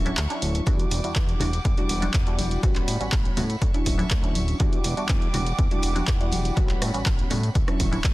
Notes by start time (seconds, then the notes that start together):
Already playing: D1 F#4 E5 C#6
0.05 F#3 C#4 D4 E4, closed hi-hat
0.17 D2, clap, closed hi-hat
0.30 F#3 C#4 D4 E4, closed hi-hat
0.42 D1, open hi-hat
0.55 closed hi-hat
0.66 E2 G3 D4 E4 F#4 F#5 D6, kick, closed hi-hat, tambourine
0.80 closed hi-hat
0.91 E1, open hi-hat, tambourine
1.04 E2 G3 D4 E4 F#4, closed hi-hat, tambourine
1.16 E2, kick, clap, closed hi-hat
1.29 closed hi-hat
1.40 E1 G3 D4 E4 F#4, open hi-hat, tambourine, low conga
1.53 closed hi-hat, tambourine
1.65 E2, kick, closed hi-hat
1.77 G3 D4 E4 F#4, closed hi-hat, low conga
1.89 E1, open hi-hat, tambourine
2.02 G3 D4 E4 F#4, closed hi-hat, tambourine, high conga
2.14 E2, kick, clap, closed hi-hat
2.27 G3 D4 E4 F#4, closed hi-hat
2.38 E1, open hi-hat, tambourine, high conga
2.51 closed hi-hat, tambourine
2.63 A1 G3 B3 C#4 F#4 C#5 B5, kick, closed hi-hat
2.75 clap, closed hi-hat
2.88 A2, open hi-hat, tambourine
3.00 A1 G3 B3 C#4 F#4, closed hi-hat, tambourine
3.12 A1, kick, clap, closed hi-hat
3.25 closed hi-hat
3.37 A2 G3 B3 C#4 F#4, open hi-hat, tambourine, low conga
3.49 closed hi-hat, tambourine
3.61 D2 F#4 E5 C#6, kick, closed hi-hat, tambourine
3.74 F#3 C#4 D4 E4, closed hi-hat
3.86 D1, kick, open hi-hat, tambourine
3.98 F#3 C#4 D4 E4, closed hi-hat, tambourine, high conga
4.10 D2, kick, clap, closed hi-hat
4.23 F#3 C#4 D4 E4, closed hi-hat
4.35 D1, open hi-hat, tambourine, high conga
4.48 closed hi-hat, tambourine
4.60 E2 G3 D4 E4 F#4 F#5 D6, kick, closed hi-hat
4.73 closed hi-hat
4.84 E1, open hi-hat, tambourine
4.97 E2 G3 D4 E4 F#4, closed hi-hat, tambourine
5.09 E2, kick, clap, closed hi-hat
5.22 closed hi-hat
5.33 E1 G3 D4 E4 F#4, open hi-hat, tambourine, low conga
5.46 closed hi-hat, tambourine
5.59 E2, kick, closed hi-hat
5.71 G3 D4 E4 F#4, closed hi-hat, low conga
5.82 E1, open hi-hat, tambourine
5.95 G3 D4 E4 F#4, closed hi-hat, tambourine, high conga
6.07 E2, kick, clap, closed hi-hat
6.20 G3 D4 E4 F#4, closed hi-hat
6.32 E1, open hi-hat, tambourine, high conga
6.45 closed hi-hat, tambourine
6.56 A1 G3 B3 C#4 F#4 C#5 B5, kick, closed hi-hat, tambourine
6.69 clap, closed hi-hat
6.82 A2, cross-stick, open hi-hat, tambourine
6.93 A1 G3 B3 C#4 F#4, closed hi-hat, tambourine
7.06 A1, kick, clap, closed hi-hat
7.19 closed hi-hat
7.30 A2 G3 B3 C#4 F#4, open hi-hat, tambourine, low conga
7.43 closed hi-hat, tambourine
7.55 D2 F#4 E5 C#6, kick, closed hi-hat
7.67 F#3 C#4 D4 E4, cross-stick, closed hi-hat
7.80 D1, kick, open hi-hat, tambourine, low conga
7.91 F#3 C#4 D4 E4, closed hi-hat, tambourine, high conga
8.04 D2, kick, clap, closed hi-hat, tambourine